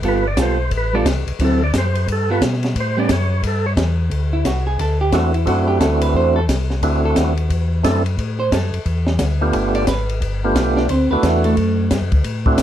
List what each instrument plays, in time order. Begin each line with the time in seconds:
0.03 tonewheel organ G1, hollow-body jazz guitar G3 B3 F4 A4, kick, ride
0.08 tonewheel organ B4
0.28 tonewheel organ D5
0.37 tonewheel organ B1, hollow-body jazz guitar G3 B3 F4 A4, kick, snare, hi-hat pedal, ride
0.42 tonewheel organ C5
0.71 tonewheel organ A1, kick, ride
0.77 tonewheel organ B4
0.93 hollow-body jazz guitar G3 B3 F4 A4, tonewheel organ D5
1.05 tonewheel organ C2, kick, snare, hi-hat pedal, ride
1.26 tonewheel organ C2, ride
1.39 tonewheel organ D2, hollow-body jazz guitar D3 F#3 C4 E4, kick, ride
1.44 tonewheel organ A4
1.64 tonewheel organ D5
1.73 tonewheel organ F#2, kick, snare, hi-hat pedal, ride
1.78 tonewheel organ C5
1.95 ride
2.08 tonewheel organ G2, kick, ride
2.12 tonewheel organ A4
2.30 hollow-body jazz guitar G3 B3 F4 A4, tonewheel organ B4
2.41 tonewheel organ B2, kick, snare, hi-hat pedal, ride
2.53 snare
2.63 snare, ride
2.75 tonewheel organ A2, kick, ride
2.80 tonewheel organ C5
2.97 hollow-body jazz guitar G3 B3 C#4, tonewheel organ D5
3.09 tonewheel organ F#2 C#5, kick, snare, hi-hat pedal, ride
3.43 tonewheel organ G2, kick, ride
3.47 tonewheel organ A4
3.66 tonewheel organ C#5
3.77 tonewheel organ E2, kick, snare, hi-hat pedal, ride
4.10 tonewheel organ D2, kick, ride
4.33 hollow-body jazz guitar E4
4.44 tonewheel organ C2, hollow-body jazz guitar F#4, kick, snare, hi-hat pedal, ride
4.67 hollow-body jazz guitar G#4
4.79 tonewheel organ D2, hollow-body jazz guitar A4, kick, ride
5.01 hollow-body jazz guitar G4
5.12 tonewheel organ E2 A3 C4 D4 E4 F#4, hollow-body jazz guitar F#4, kick, snare, hi-hat pedal, ride
5.34 hollow-body jazz guitar E4, ride
5.45 tonewheel organ F#2 A3 C4 D4 E4 F#4, hollow-body jazz guitar F#4, kick, ride
5.68 hollow-body jazz guitar G4
5.80 tonewheel organ D2, hollow-body jazz guitar A4, kick, snare, hi-hat pedal, ride
6.01 hollow-body jazz guitar B4, ride
6.14 tonewheel organ E2, hollow-body jazz guitar C5, kick
6.36 hollow-body jazz guitar A4
6.48 tonewheel organ C2, kick, snare, hi-hat pedal, ride
6.70 snare
6.82 tonewheel organ D2 A3 C4 D4 E4 F#4, kick, ride
7.05 hollow-body jazz guitar A4
7.16 tonewheel organ D#2, hollow-body jazz guitar F#4, kick, snare, hi-hat pedal, ride
7.37 ride
7.50 tonewheel organ E2, kick, ride
7.83 tonewheel organ F#2 A3 C4 D4 E4 A4, kick, snare, hi-hat pedal, ride
8.06 ride
8.17 tonewheel organ A2, kick, ride
8.40 hollow-body jazz guitar C5
8.52 tonewheel organ F#2, hollow-body jazz guitar A4, kick, snare, hi-hat pedal, ride
8.73 tonewheel organ F#2, ride
8.85 tonewheel organ E2, kick, ride
9.07 snare
9.19 tonewheel organ D2, kick, snare, hi-hat pedal, ride
9.41 tonewheel organ A3 B3 D4 F4 G4
9.53 tonewheel organ G1, kick, ride
9.75 hollow-body jazz guitar D5, ride
9.87 tonewheel organ G#1, hollow-body jazz guitar B4, kick, snare, hi-hat pedal, ride
10.09 ride
10.21 tonewheel organ G1, kick, ride
10.44 tonewheel organ A3 B3 D4 F4 G4
10.55 tonewheel organ B1, kick, snare, hi-hat pedal, ride
10.76 hollow-body jazz guitar D4 D5, snare
10.89 tonewheel organ D2, hollow-body jazz guitar C4 C5, kick, ride
11.11 tonewheel organ D2 A3 D4 E4 F#4, hollow-body jazz guitar B3 B4
11.22 tonewheel organ E2, kick, snare, hi-hat pedal, ride
11.44 hollow-body jazz guitar A3 A4, ride
11.57 tonewheel organ F#2, kick, ride
11.91 tonewheel organ G2, kick, snare, hi-hat pedal, ride
12.01 tonewheel organ F#2
12.12 tonewheel organ D2, kick, ride
12.24 tonewheel organ A2, kick, ride
12.46 tonewheel organ A3 C4 D4 E4 F#4, kick
12.58 tonewheel organ B2, kick, snare, hi-hat pedal, ride